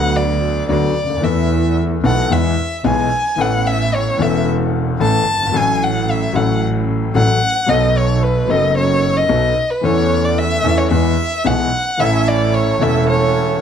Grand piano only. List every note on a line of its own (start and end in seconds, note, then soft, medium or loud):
0.00 0.65 D2 medium
0.00 0.65 D3 medium
0.00 0.65 F#3 medium
0.00 0.65 B3 medium
0.00 0.66 F#4 medium
0.69 0.92 D2 medium
0.69 0.92 D3 medium
0.69 0.92 F#3 medium
0.69 0.92 B3 medium
0.69 0.92 F#4 medium
1.04 1.10 C#2 soft
1.10 1.16 D2 medium
1.17 1.23 D#2 medium
1.21 2.00 E2 medium
1.21 2.00 E3 medium
1.21 2.00 A3 medium
1.21 2.00 B3 medium
1.25 2.01 A4 medium
2.04 2.26 B1 medium
2.04 2.26 B2 medium
2.04 2.27 E3 medium
2.04 2.26 A3 medium
2.04 2.27 B3 medium
2.04 2.27 A4 medium
2.30 2.53 E2 medium
2.30 2.53 E3 medium
2.30 2.53 G#3 medium
2.30 2.53 B3 medium
2.30 2.54 G#4 medium
2.84 3.07 B1 medium
2.84 3.07 B2 medium
2.84 3.07 E3 medium
2.84 3.07 G#3 medium
2.84 3.07 B3 medium
2.84 3.08 G#4 medium
3.36 4.15 A1 medium
3.36 4.15 A2 medium
3.36 4.14 E3 medium
3.36 4.15 B3 medium
3.36 4.16 C#4 medium
3.40 4.16 A4 medium
4.17 4.96 E1 medium
4.17 4.96 E2 medium
4.17 4.95 E3 medium
4.17 4.95 B3 medium
4.17 4.96 C#4 medium
4.21 4.97 A4 medium
5.00 5.23 A1 medium
5.00 5.23 A2 medium
5.00 5.23 E3 medium
5.00 5.23 B3 medium
5.00 5.23 C#4 medium
5.00 5.23 A4 medium
5.34 5.40 F#1 soft
5.41 5.47 G1 medium
5.47 5.54 G#1 medium
5.52 6.30 A1 medium
5.52 6.30 A2 medium
5.52 6.29 F#3 medium
5.52 6.30 A3 medium
5.52 6.31 C#4 medium
5.52 6.31 A4 medium
6.33 7.11 A1 medium
6.33 7.11 A2 medium
6.33 7.10 F#3 medium
6.33 7.11 A3 medium
6.33 7.11 C#4 medium
6.33 7.12 A4 medium
7.14 7.37 A1 medium
7.14 7.37 A2 medium
7.14 7.37 F#3 medium
7.14 7.37 A3 medium
7.14 7.37 C#4 medium
7.14 7.37 A4 medium
7.66 8.45 B1 medium
7.66 8.45 B2 medium
7.66 8.44 F#3 medium
7.66 8.45 B3 medium
7.66 8.45 D#4 medium
7.70 8.46 A4 medium
8.48 9.26 F#1 medium
8.48 9.26 F#2 medium
8.48 9.25 F#3 medium
8.48 9.26 B3 medium
8.48 9.26 D#4 medium
8.48 9.27 A4 medium
9.29 9.52 B1 medium
9.29 9.52 B2 medium
9.29 9.52 F#3 medium
9.29 9.52 B3 medium
9.29 9.52 D#4 medium
9.29 9.52 A4 medium
9.81 10.60 E2 medium
9.81 9.83 E3 medium
9.81 10.60 E3 medium
9.81 10.60 A3 medium
9.81 10.60 C#4 medium
9.81 10.61 A4 medium
10.64 10.87 E2 medium
10.64 10.87 E3 medium
10.64 10.87 A3 medium
10.64 10.87 C#4 medium
10.64 10.87 A4 medium
10.91 11.14 E2 medium
10.91 11.14 E3 medium
10.91 11.14 G#3 medium
10.91 11.14 B3 medium
10.91 11.14 G#4 medium
11.45 11.68 B1 medium
11.45 11.68 B2 medium
11.45 11.68 E3 medium
11.45 11.68 G#3 medium
11.45 11.68 B3 medium
11.45 11.68 G#4 medium
11.97 12.76 A1 medium
11.97 12.76 A2 medium
11.97 12.75 E3 medium
11.97 12.76 A3 medium
11.97 12.77 C#4 medium
12.01 12.77 A4 medium
12.79 13.57 E1 medium
12.79 13.58 E2 medium
12.79 13.56 E3 medium
12.79 13.57 A3 medium
12.79 13.58 C#4 medium
12.79 13.58 A4 medium